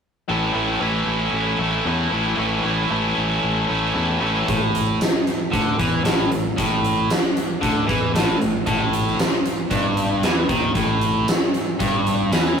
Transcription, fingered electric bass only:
0.30 0.50 A1 medium
0.55 0.76 A1 medium
0.81 1.02 A1 medium
1.07 1.28 A1 medium
1.33 1.54 A1 medium
1.59 1.80 A1 medium
1.85 2.07 E2 medium
2.12 2.33 A1 medium
2.38 2.59 A1 medium
2.64 2.85 A1 medium
2.91 3.12 A1 medium
3.18 3.39 A1 medium
3.44 3.65 A1 medium
3.70 3.91 A1 medium
3.95 4.17 E2 medium
4.21 4.42 A1 medium
4.49 4.97 A1 medium
5.53 5.78 D2 medium
5.80 6.04 E2 medium
6.06 6.30 A1 medium
6.32 6.56 A1 medium
6.58 7.07 A1 medium
7.63 7.87 D2 medium
7.89 8.13 E2 medium
8.15 8.39 A1 medium
8.42 8.66 A1 medium
8.67 9.16 A1 medium
9.71 10.20 G1 medium
10.24 10.48 E2 medium
10.49 10.74 D#2 medium
10.75 11.24 A1 medium
11.80 12.29 G1 medium
12.32 12.56 E2 medium

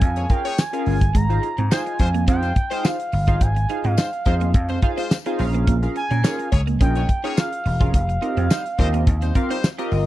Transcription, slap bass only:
0.02 0.25 F2 loud
0.87 1.10 G1 medium
1.15 1.38 G#1 loud
1.58 1.69 G#2 medium
2.00 2.23 F2 loud
2.28 2.51 F2 loud
3.13 3.36 G1 loud
3.41 3.64 G#1 loud
3.85 3.95 G#2 loud
4.26 4.49 F2 medium
4.54 4.77 F2 loud
5.40 5.86 A#1 loud
6.11 6.22 A#2 medium
6.53 6.76 C#2 medium
6.81 7.04 A#1 medium
7.66 7.89 E1 loud
7.94 8.17 F1 loud
8.37 8.48 F2 loud
8.79 9.02 D#2 medium
9.07 9.30 D#2 loud
9.92 10.06 G1 loud

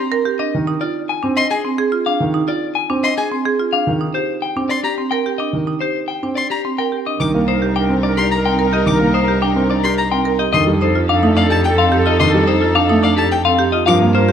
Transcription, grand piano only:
0.55 0.72 D#3 medium
1.24 1.41 C4 medium
2.20 2.38 D#3 medium
2.90 3.08 C4 medium
3.87 4.05 D#3 medium
4.56 4.74 C4 soft
5.53 5.71 D#3 medium
6.23 6.41 C4 soft
7.20 7.38 D#3 medium
7.34 7.52 A#3 medium
7.89 8.07 C4 medium
8.86 9.05 D#3 medium
9.00 9.18 A#3 medium
9.56 9.74 C4 medium
10.54 10.72 D#3 medium
10.67 10.85 G3 medium
11.23 11.41 A3 medium
12.20 12.38 D#3 medium
12.34 12.52 G3 medium
12.91 13.08 A3 medium
13.87 14.05 F3 medium
14.01 14.19 A#3 medium

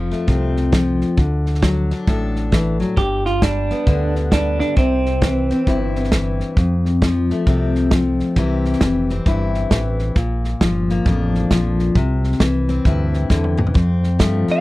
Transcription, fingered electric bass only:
0.00 0.12 F1 medium
0.28 1.02 C2 medium
1.18 1.92 D2 medium
2.08 2.82 A1 medium
2.97 3.71 G1 medium
3.87 4.61 D2 medium
4.77 5.51 C2 medium
5.67 6.41 G1 medium
6.57 7.31 F2 medium
7.47 8.21 C2 medium
8.37 8.74 C2 medium
8.81 9.19 F1 medium
9.26 9.64 G1 medium
9.71 10.09 A1 medium
10.16 10.53 A#1 medium
10.61 10.99 G1 medium
11.06 11.44 A1 medium
11.51 11.89 A#1 medium
11.96 12.33 C2 medium
12.40 12.79 C2 medium
12.85 13.24 D2 medium
13.30 13.69 E2 medium
13.75 14.19 F2 medium
14.20 14.46 G2 medium
14.49 muted fingered electric bass stroke soft

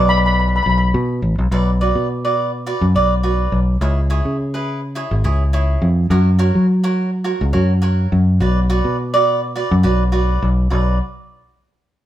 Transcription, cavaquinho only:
0.00 0.63 F#4 medium
0.00 0.63 B4 medium
0.00 0.63 D5 medium
1.52 1.70 F#4 medium
1.52 1.70 B4 medium
1.52 1.70 D5 medium
1.81 2.07 F#4 medium
1.81 2.07 B4 medium
1.81 2.07 D5 medium
2.25 2.50 F#4 medium
2.25 2.50 B4 medium
2.25 2.50 D5 medium
2.66 2.84 F#4 medium
2.66 2.85 B4 medium
2.66 2.85 D5 medium
2.96 3.13 F#4 medium
2.96 3.13 B4 medium
2.96 3.13 D5 loud
3.23 3.59 F#4 medium
3.23 3.59 B4 medium
3.23 3.59 D5 medium
3.81 3.99 E4 medium
3.81 3.99 G#4 medium
3.81 4.00 C#5 medium
4.10 4.36 E4 medium
4.10 4.36 G#4 medium
4.10 4.36 C#5 loud
4.54 4.80 E4 medium
4.54 4.80 G#4 medium
4.54 4.80 B4 medium
4.95 5.14 E4 medium
4.95 5.14 G#4 medium
4.95 5.14 C#5 loud
5.24 5.43 E4 medium
5.24 5.43 G#4 medium
5.24 5.43 C#5 medium
5.53 5.88 E4 medium
5.53 5.88 G#4 medium
5.53 5.89 C#5 medium
6.11 6.29 F#4 medium
6.11 6.29 A#4 medium
6.11 6.29 C#5 medium
6.39 6.65 F#4 medium
6.39 6.66 A#4 medium
6.39 6.66 C#5 loud
6.83 7.09 F#4 medium
6.83 7.09 A#4 medium
6.83 7.10 C#5 loud
7.24 7.43 F#4 medium
7.24 7.43 A#4 medium
7.24 7.43 C#5 medium
7.53 7.72 F#4 medium
7.53 7.72 A#4 medium
7.53 7.72 C#5 medium
7.82 8.18 F#4 medium
7.82 8.18 A#4 medium
7.82 8.18 C#5 medium
8.40 8.59 F#4 medium
8.40 8.59 B4 medium
8.40 8.59 D5 medium
8.70 8.96 F#4 medium
8.70 8.96 B4 medium
8.70 8.96 D5 medium
9.14 9.40 F#4 medium
9.14 9.40 B4 medium
9.14 9.40 D5 loud
9.56 9.74 F#4 medium
9.56 9.74 B4 medium
9.56 9.74 D5 medium
9.83 10.02 F#4 loud
9.83 10.03 B4 medium
9.83 10.02 D5 medium
10.12 10.48 F#4 medium
10.12 10.48 B4 medium
10.12 10.48 D5 medium
10.70 10.98 F#4 medium
10.70 10.98 B4 medium
10.70 10.98 D5 medium

